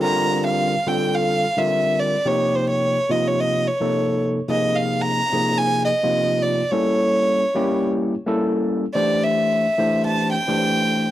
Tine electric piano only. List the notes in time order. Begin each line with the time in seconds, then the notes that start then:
0.03 D3 G3 C4 F4 A#4
0.86 D3 G3 C4 F4 A4
1.57 D3 G3 C4 F4 A#4
2.25 C3 F3 A#3 D#4 G4
3.09 C3 F3 A#3 D#4 F4
3.80 C3 F3 A#3 D#4 A4
4.48 C3 F3 A#3 D#4 G#4
5.32 C3 F3 A#3 D#4 G#4
6.03 C3 F3 A#3 D#4 F4
6.71 G3 A#3 C#4 E4 A4
7.54 G3 A#3 C#4 E4 G4
8.26 G3 A#3 C#4 E4 A4
8.95 E3 A3 D4 G4 C5
9.78 E3 A3 D4 G4 C5
10.48 E3 A3 D4 G4 C5